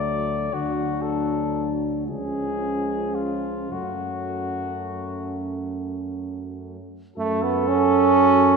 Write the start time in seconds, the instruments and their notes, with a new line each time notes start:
Already playing: tuba D2, trombone F#3, euphonium A3, french horn section F#4, flugelhorn D5
0.53 tuba D2, trombone F#3, euphonium D4, flugelhorn F#4, french horn section F#4
1.02 flugelhorn A4
2.05 tuba C#2, trombone F3, euphonium G#3, french horn section C#4, flugelhorn G#4
3.15 flugelhorn F4
3.70 tuba F#2, trombone F#3, euphonium A3, french horn section C#4, flugelhorn F#4
7.16 tuba F#2, trombone A3, euphonium F#4, flugelhorn A4, french horn section A4
7.43 trombone B3
7.68 trombone C#4